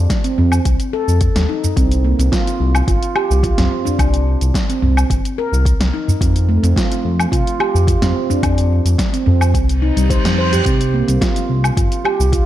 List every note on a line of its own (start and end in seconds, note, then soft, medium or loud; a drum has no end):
0.10 kick loud
0.10 snare medium
0.10 closed hi-hat medium
0.10 shaker medium
0.24 0.37 C4 medium
0.24 closed hi-hat soft
0.24 shaker soft
0.38 0.60 F2 loud
0.38 0.52 C4 medium
0.38 udu medium
0.52 low woodblock medium
0.52 shaker medium
0.65 0.77 C2 medium
0.65 kick loud
0.65 closed hi-hat medium
0.65 shaker medium
0.80 closed hi-hat soft
0.80 shaker soft
0.93 1.07 A4 medium
1.08 1.29 F2 medium
1.08 shaker medium
1.21 kick loud
1.21 closed hi-hat medium
1.21 shaker medium
1.35 1.46 D#2 medium
1.35 snare medium
1.35 closed hi-hat soft
1.35 shaker soft
1.49 1.63 D#4 medium
1.64 udu medium
1.64 shaker medium
1.76 2.14 C2 loud
1.76 1.85 C4 medium
1.76 kick loud
1.76 closed hi-hat medium
1.76 shaker medium
1.92 closed hi-hat soft
1.92 shaker soft
2.04 2.18 A#3 medium
2.19 2.29 C2 medium
2.19 2.27 C4 medium
2.19 closed hi-hat soft
2.19 shaker medium
2.32 2.86 F4 medium
2.32 kick loud
2.32 snare medium
2.32 closed hi-hat medium
2.32 shaker soft
2.47 closed hi-hat soft
2.47 shaker soft
2.60 2.82 C2 loud
2.75 low woodblock medium
2.75 shaker medium
2.88 2.99 G1 medium
2.88 2.96 F4 medium
2.88 kick loud
2.88 closed hi-hat medium
2.88 shaker medium
3.03 closed hi-hat soft
3.03 shaker soft
3.16 3.29 G4 medium
3.16 low woodblock medium
3.30 3.52 C2 medium
3.30 shaker medium
3.43 3.57 F4 medium
3.43 kick loud
3.43 closed hi-hat medium
3.43 shaker medium
3.58 3.68 C2 medium
3.58 3.71 C4 medium
3.58 snare medium
3.58 closed hi-hat soft
3.58 udu medium
3.58 shaker soft
3.85 3.98 D4 medium
3.85 udu medium
3.85 shaker medium
3.99 4.36 C2 medium
3.99 4.07 D4 medium
3.99 kick loud
3.99 closed hi-hat medium
3.99 low woodblock medium
3.99 shaker soft
4.14 closed hi-hat soft
4.14 shaker soft
4.41 4.52 C2 medium
4.41 closed hi-hat soft
4.41 shaker medium
4.54 kick medium
4.54 snare medium
4.54 closed hi-hat medium
4.54 shaker soft
4.69 4.81 C4 medium
4.69 closed hi-hat soft
4.69 shaker soft
4.82 5.04 C2 loud
4.82 4.96 C4 medium
4.82 udu medium
4.97 low woodblock medium
4.97 shaker medium
5.10 5.21 G1 medium
5.10 kick loud
5.10 closed hi-hat medium
5.10 shaker medium
5.25 closed hi-hat soft
5.25 shaker soft
5.38 5.52 A#4 medium
5.52 5.74 C2 medium
5.52 shaker medium
5.65 kick medium
5.65 closed hi-hat medium
5.65 shaker soft
5.80 5.90 C2 medium
5.80 snare medium
5.80 closed hi-hat soft
5.80 shaker soft
5.94 6.07 D#4 medium
6.08 udu medium
6.08 shaker medium
6.21 6.58 F2 loud
6.21 6.29 C4 medium
6.21 kick loud
6.21 closed hi-hat medium
6.21 shaker medium
6.36 closed hi-hat soft
6.36 shaker soft
6.49 6.62 A3 medium
6.63 6.74 F2 medium
6.63 6.71 C4 medium
6.63 closed hi-hat soft
6.63 shaker medium
6.76 7.31 F4 medium
6.76 kick medium
6.76 snare medium
6.76 closed hi-hat medium
6.76 shaker soft
6.92 closed hi-hat soft
6.92 shaker soft
7.05 7.26 F2 loud
7.20 low woodblock medium
7.20 shaker medium
7.32 7.43 C2 medium
7.32 7.41 F4 medium
7.32 kick medium
7.32 closed hi-hat medium
7.32 shaker medium
7.47 closed hi-hat soft
7.47 shaker soft
7.60 7.74 G4 medium
7.60 low woodblock medium
7.75 7.96 F2 medium
7.75 shaker medium
7.87 8.01 F4 medium
7.87 kick loud
7.87 closed hi-hat medium
7.87 shaker soft
8.02 8.13 F2 medium
8.02 8.15 C4 medium
8.02 snare medium
8.02 closed hi-hat soft
8.02 udu medium
8.02 shaker soft
8.30 8.42 D4 medium
8.30 udu medium
8.30 shaker medium
8.43 8.80 F2 medium
8.43 8.52 D4 medium
8.43 kick loud
8.43 closed hi-hat medium
8.43 low woodblock medium
8.43 shaker medium
8.58 closed hi-hat soft
8.58 shaker soft
8.85 8.96 F2 medium
8.85 closed hi-hat soft
8.85 shaker medium
8.98 kick loud
8.98 snare medium
8.98 closed hi-hat medium
8.98 shaker medium
9.13 9.25 C4 medium
9.13 closed hi-hat soft
9.13 shaker soft
9.26 9.55 F2 loud
9.26 9.40 C4 medium
9.26 udu medium
9.41 low woodblock medium
9.41 shaker medium
9.54 9.91 C2 medium
9.54 kick medium
9.54 closed hi-hat medium
9.54 reverse cymbal medium
9.54 shaker medium
9.69 closed hi-hat soft
9.69 shaker soft
9.82 9.95 D#4 medium
9.96 10.18 C2 medium
9.96 10.09 G3 medium
9.96 closed hi-hat soft
9.96 shaker medium
10.10 10.24 C5 medium
10.10 kick medium
10.10 closed hi-hat medium
10.10 shaker medium
10.24 10.61 F2 medium
10.24 snare medium
10.24 closed hi-hat soft
10.24 shaker soft
10.39 10.51 C5 medium
10.53 10.65 G4 medium
10.53 closed hi-hat soft
10.53 udu medium
10.53 shaker medium
10.66 11.03 C2 loud
10.66 10.74 C4 medium
10.66 kick loud
10.66 closed hi-hat medium
10.66 shaker medium
10.81 closed hi-hat soft
10.81 shaker soft
10.94 11.07 A#3 medium
11.08 11.18 C2 medium
11.08 11.16 C4 medium
11.08 closed hi-hat soft
11.08 shaker medium
11.21 11.76 F4 medium
11.21 kick loud
11.21 snare medium
11.21 closed hi-hat medium
11.21 shaker soft
11.36 closed hi-hat soft
11.36 shaker soft
11.49 11.71 C2 loud
11.64 low woodblock medium
11.64 shaker medium
11.77 11.88 G1 medium
11.77 11.85 F4 medium
11.77 kick loud
11.77 closed hi-hat medium
11.77 shaker medium
11.92 closed hi-hat soft
11.92 shaker soft
12.05 12.18 G4 medium
12.05 low woodblock medium
12.20 12.41 C2 medium
12.20 shaker medium
12.32 12.45 F4 medium
12.32 kick loud
12.32 closed hi-hat medium
12.32 shaker soft